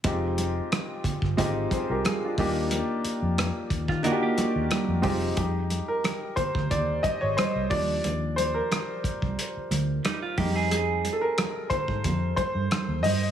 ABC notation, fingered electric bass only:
X:1
M:4/4
L:1/16
Q:"Swing 16ths" 1/4=90
K:Fdor
V:1 name="Fingered electric bass" clef=bass
F,,,4 z3 G,,, A,,,2 z C,, z2 E,,2- | E,, z2 F,,2 z E,, E, z3 E,, z F,, F,,,2 | F,,3 z4 D,, E,,2 z A,,, z C,, E,,2 | E,,4 z3 C,, z2 D,,2 z2 F,,2- |
F,,3 z4 A,, F,,2 z G,, z E,, G,,2 |]